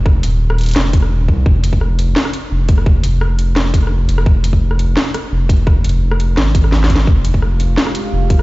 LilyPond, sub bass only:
\new Staff \with { instrumentName = "Sub bass" } { \clef bass \time 4/4 \key f \minor \tempo 4 = 171 f,,8 ees,,4. f,,4. c,8 | f,,2 r4 f,,4~ | f,,8 f,,2. f,,8 | f,,2 r4 f,,4~ |
f,,8 f,,4. aes,,2 | f,,2 r4 f,,4 | }